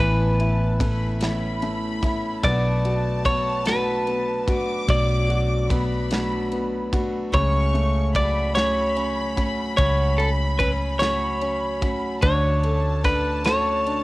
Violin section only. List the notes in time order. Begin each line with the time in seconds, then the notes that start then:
Already playing: A5
0.80 B5
1.20 B5
2.43 A5
4.46 D6
5.71 B5
7.33 C#6
8.14 B5
12.23 A5